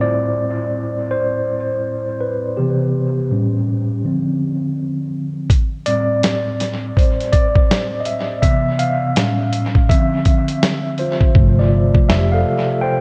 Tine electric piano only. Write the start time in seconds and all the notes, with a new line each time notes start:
Already playing: A2 G3 C4 E4 C5
0.01 D5
1.11 C5
2.21 B4
2.57 C3 E3 B3 G4
3.31 A2 G3 C#4
4.04 D3 F3 C4
5.86 A2 G3 C4 D5
6.97 C5
7.32 D5
8.00 D#5
8.06 E5
8.42 C3 E3 B3 E5
8.79 F5
9.16 A2 G3 C#4
9.89 D3 F3 C4 E5
10.99 F4 C5
11.36 C3 F3 A3
11.59 F4 D5
12.09 G4 E5
12.32 A4 F5
12.81 C5 G5